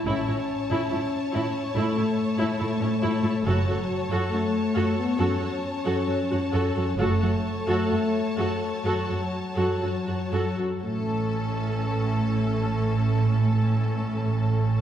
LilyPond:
<<
  \new Staff \with { instrumentName = "Violin section" } { \time 4/4 \key a \major \tempo 4 = 66 <cis'' a''>1 | <cis'' a''>1 | <cis'' a''>2.~ <cis'' a''>8. r16 | <a' a''>1 | }
  \new Staff \with { instrumentName = "Viola section" } { \time 4/4 \key a \major e'16 e'16 r16 e'16 e'16 r16 e'16 r16 e'16 e'16 r16 e'16 e'16 <cis' e'>16 e'16 e'16 | <fis' a'>16 <fis' a'>16 r16 <fis' a'>16 <fis' a'>16 r16 <fis' a'>16 r16 <fis' a'>16 <fis' a'>16 r16 <fis' a'>16 <fis' a'>16 fis'16 <fis' a'>16 <fis' a'>16 | <fis' a'>16 <fis' a'>16 r16 <fis' a'>16 <fis' a'>16 r16 <fis' a'>16 r16 <fis' a'>16 <fis' a'>16 r16 <fis' a'>16 <fis' a'>16 fis'16 <fis' a'>16 <fis' a'>16 | <cis' a'>1 | }
  \new Staff \with { instrumentName = "French horn section" } { \time 4/4 \key a \major cis'2 a4 a4 | fis4 a8. b16 cis'2 | a2 fis4 fis4 | a1 | }
  \new Staff \with { instrumentName = "Cello section" } { \clef bass \time 4/4 \key a \major a,16 a,16 r16 a,16 a,16 r16 a,16 r16 a,16 a,16 r16 a,16 a,16 a,16 a,16 a,16 | fis,16 fis,16 r16 fis,16 fis,16 r16 fis,16 r16 fis,16 fis,16 r16 fis,16 fis,16 fis,16 fis,16 fis,16 | fis,16 fis,16 r16 fis,16 fis,16 r16 fis,16 r16 fis,16 fis,16 r16 fis,16 fis,16 fis,16 fis,16 fis,16 | a,1 | }
  \new Staff \with { instrumentName = "Double bass section" } { \clef bass \time 4/4 \key a \major a,,16 r2. r8. | fis,,16 r2. r8. | fis,,16 r2. r8. | a,,1 | }
>>